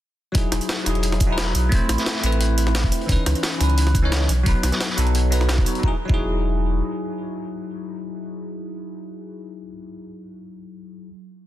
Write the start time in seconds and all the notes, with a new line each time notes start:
0.32 E1 F#3 D#4 E4, kick, closed hi-hat
0.38 G#4
0.52 E1, snare, closed hi-hat, tambourine
0.61 closed hi-hat, tambourine
0.69 snare, closed hi-hat
0.79 closed hi-hat
0.83 E1 F#3 D#4 E4, snare, closed hi-hat, tambourine
0.89 G#4
0.95 closed hi-hat
1.03 closed hi-hat
1.12 snare, closed hi-hat
1.20 kick, closed hi-hat, tambourine
1.27 F#3 D#4 E4
1.32 B4
1.37 snare, closed hi-hat
1.46 snare
1.55 B1, closed hi-hat, tambourine
1.69 A1 A3 C4 E4, kick, closed hi-hat
1.75 C5
1.89 A1, snare, closed hi-hat, tambourine
1.98 snare, tambourine
2.06 snare, closed hi-hat
2.16 snare
2.21 A1 A3 C4 E4, closed hi-hat, tambourine
2.26 B4
2.32 closed hi-hat
2.40 closed hi-hat
2.58 closed hi-hat, tambourine
2.67 snare
2.75 snare, closed hi-hat
2.84 kick, closed hi-hat
2.91 closed hi-hat, tambourine
3.01 closed hi-hat
3.06 C#2 E3 C#4 D#4, kick, closed hi-hat
3.12 B4
3.26 C#2, snare, closed hi-hat, tambourine
3.35 closed hi-hat, tambourine
3.43 snare, closed hi-hat
3.52 closed hi-hat
3.58 C#2 E3 C#4 D#4, snare, closed hi-hat, tambourine
3.63 B4
3.70 closed hi-hat
3.78 closed hi-hat
3.87 snare
3.95 kick, closed hi-hat, tambourine
4.02 E3 C#4 D#4 C#5
4.12 snare, closed hi-hat
4.21 snare
4.29 B1, closed hi-hat, tambourine
4.43 B1 F#3 B3 D#4, kick, closed hi-hat
4.49 B4
4.63 B1, snare, closed hi-hat, tambourine
4.72 snare, tambourine
4.80 snare, closed hi-hat
4.89 snare
4.96 B1 F#3 B3 D#4 A4, closed hi-hat, tambourine
5.07 closed hi-hat
5.15 closed hi-hat
5.30 F#3 B3 D#4 B4, closed hi-hat, tambourine
5.41 snare
5.48 snare, closed hi-hat
5.58 kick, closed hi-hat
5.65 F#3 B3 D#4 C#5, closed hi-hat, tambourine
5.75 F#3, closed hi-hat
5.82 E1 D#4 E4, kick
5.88 G#4
6.05 F#3 D#4
6.09 E1 E4, kick
6.14 G#4